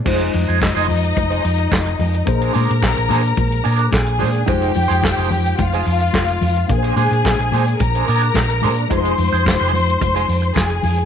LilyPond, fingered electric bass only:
\new Staff \with { instrumentName = "Fingered electric bass" } { \clef bass \time 4/4 \key f \dorian \tempo 4 = 108 f,,8 f,16 f,16 f,,16 f,,16 f,8 f,,8 f,8 f,,8 f,8 | bes,,8 bes,16 bes,16 bes,,16 bes,,16 bes,8 bes,,8 bes,8 bes,,8 bes,8 | f,,8 f,16 f,16 f,,16 f,,16 f,8 f,,8 f,8 f,,8 f,8 | bes,,8 bes,16 bes,16 bes,,16 bes,,16 bes,8 bes,,8 bes,8 bes,,8 bes,8 |
f,,8 f,16 f,16 f,,16 f,,16 f,8 f,,8 f,8 f,,8 f,8 | }